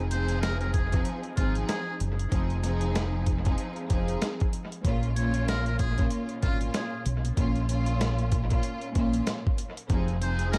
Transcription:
0.00 1.02 F1 loud
0.10 0.85 F3 loud
0.10 0.85 C4 loud
0.10 0.86 D#4 medium
0.10 0.86 G#4 loud
0.10 0.40 C5 medium
0.10 closed hi-hat medium
0.28 closed hi-hat medium
0.42 0.59 A#4 medium
0.42 snare loud
0.42 closed hi-hat medium
0.60 0.72 A#4 medium
0.60 closed hi-hat soft
0.73 1.02 G#4 medium
0.73 kick medium
0.73 closed hi-hat medium
0.91 1.21 F3 loud
0.91 1.21 C4 medium
0.91 1.21 D#4 medium
0.91 1.21 G#4 loud
0.91 kick loud
0.91 closed hi-hat medium
1.05 closed hi-hat medium
1.23 closed hi-hat soft
1.36 1.62 G#1 medium
1.36 2.11 F3 loud
1.36 2.11 C4 medium
1.36 2.12 D#4 loud
1.36 1.54 F4 medium
1.36 2.12 G#4 loud
1.36 kick medium
1.36 closed hi-hat medium
1.55 closed hi-hat medium
1.69 1.97 G#4 medium
1.69 snare loud
1.69 closed hi-hat loud
2.00 2.25 F#1 medium
2.00 closed hi-hat medium
2.19 closed hi-hat medium
2.30 3.54 F1 loud
2.30 2.61 F3 medium
2.30 2.61 C4 medium
2.30 2.61 D#4 medium
2.30 2.61 G#4 loud
2.30 kick loud
2.30 closed hi-hat medium
2.50 closed hi-hat soft
2.63 3.37 F3 loud
2.63 3.38 C4 medium
2.63 3.38 D#4 loud
2.63 3.38 G#4 loud
2.63 snare soft
2.63 closed hi-hat medium
2.81 closed hi-hat medium
2.95 snare loud
2.95 closed hi-hat medium
3.26 kick medium
3.26 closed hi-hat medium
3.44 3.73 F3 loud
3.44 3.74 C4 medium
3.44 3.74 D#4 medium
3.44 3.74 G#4 loud
3.44 kick loud
3.44 closed hi-hat medium
3.58 closed hi-hat medium
3.76 closed hi-hat soft
3.88 4.15 F1 medium
3.88 4.48 F3 loud
3.88 4.48 C4 medium
3.88 4.49 D#4 medium
3.88 4.49 G#4 loud
3.88 kick loud
3.88 closed hi-hat medium
4.08 closed hi-hat medium
4.22 snare loud
4.22 closed hi-hat loud
4.40 kick loud
4.40 closed hi-hat soft
4.53 closed hi-hat medium
4.72 closed hi-hat medium
4.83 6.07 A#1 loud
4.83 5.13 A#2 loud
4.83 5.14 A#3 medium
4.83 5.14 C#4 medium
4.83 5.14 F4 loud
4.83 kick loud
4.83 closed hi-hat medium
5.03 closed hi-hat soft
5.15 5.90 A#2 loud
5.15 5.91 A#3 medium
5.15 5.91 C#4 loud
5.15 5.91 F4 loud
5.15 5.44 C#5 medium
5.15 closed hi-hat medium
5.34 closed hi-hat medium
5.48 5.65 A#4 medium
5.48 snare loud
5.48 closed hi-hat medium
5.66 5.78 A#4 medium
5.66 closed hi-hat soft
5.79 6.08 G#4 medium
5.79 kick medium
5.79 closed hi-hat medium
5.98 6.27 A#2 medium
5.98 6.27 A#3 medium
5.98 6.27 C#4 medium
5.98 6.27 F4 loud
5.98 kick loud
5.98 closed hi-hat medium
6.10 closed hi-hat medium
6.29 closed hi-hat soft
6.42 6.67 G#1 medium
6.42 7.16 A#2 loud
6.42 7.17 A#3 medium
6.42 7.17 C#4 medium
6.42 6.59 F4 medium
6.42 7.17 F4 loud
6.42 kick medium
6.42 closed hi-hat medium
6.61 closed hi-hat medium
6.74 7.03 G#4 medium
6.74 snare loud
6.74 closed hi-hat loud
7.06 7.30 B1 medium
7.06 closed hi-hat medium
7.25 closed hi-hat medium
7.36 8.60 A#1 loud
7.36 7.66 A#2 loud
7.36 7.66 A#3 medium
7.36 7.67 C#4 medium
7.36 7.67 F4 loud
7.36 kick loud
7.36 closed hi-hat medium
7.55 closed hi-hat soft
7.68 8.43 A#2 loud
7.68 8.43 A#3 medium
7.68 8.43 C#4 medium
7.68 8.44 F4 loud
7.68 closed hi-hat medium
7.86 closed hi-hat medium
8.01 snare loud
8.01 closed hi-hat loud
8.19 closed hi-hat soft
8.32 kick medium
8.32 closed hi-hat medium
8.49 8.78 A#2 medium
8.49 8.79 A#3 medium
8.49 8.79 C#4 medium
8.49 8.79 F4 loud
8.49 kick loud
8.49 closed hi-hat medium
8.63 closed hi-hat medium
8.81 closed hi-hat soft
8.94 9.20 A#1 medium
8.94 9.54 A#2 loud
8.94 9.54 A#3 medium
8.94 9.54 C#4 medium
8.94 9.54 F4 loud
8.94 kick medium
8.94 closed hi-hat medium
9.13 closed hi-hat medium
9.27 snare loud
9.27 closed hi-hat loud
9.47 kick medium
9.58 closed hi-hat medium
9.77 closed hi-hat medium
9.89 10.58 F1 loud
9.89 10.19 F3 loud
9.89 10.19 C4 medium
9.89 10.19 D#4 medium
9.89 10.20 G#4 loud
9.89 kick loud
9.89 closed hi-hat medium
10.08 closed hi-hat soft
10.21 10.58 F3 loud
10.21 10.58 C4 loud
10.21 10.58 D#4 medium
10.21 10.58 G#4 loud
10.21 10.50 C5 medium
10.21 closed hi-hat medium
10.39 closed hi-hat medium
10.52 10.58 A#4 medium
10.52 snare loud
10.52 closed hi-hat loud

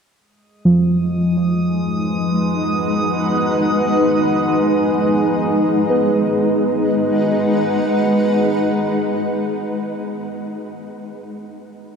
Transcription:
0.17 5.89 G#3 medium
0.17 5.90 G#3 medium
0.17 5.91 D#6 medium
0.61 5.90 D#4 medium
0.65 4.56 F3 medium
1.06 5.90 B4 medium
1.42 5.90 F#5 medium
5.90 9.62 G#3 medium
5.90 9.52 G#3 medium
5.90 10.20 B4 soft
6.06 9.53 D#4 medium
6.20 9.52 B4 medium
6.34 9.52 F#5 medium

